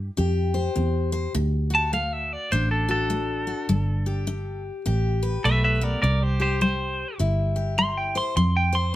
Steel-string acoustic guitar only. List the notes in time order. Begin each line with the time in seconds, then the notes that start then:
Already playing: C4
0.17 C3 G4
0.54 C5
0.76 C4
1.12 C5
1.35 D3
1.70 F#4
1.93 A3
2.52 A2 D4
2.89 F#4
3.10 A3
3.47 F#4
3.69 G3
4.06 G4
4.27 D4
4.86 D3 G4
5.23 B4
5.45 A3
5.81 B3
6.04 C3
6.40 G4
6.61 G3
7.19 C3 E4
7.56 G4
7.78 G3
8.15 C5
8.37 F3
8.73 C5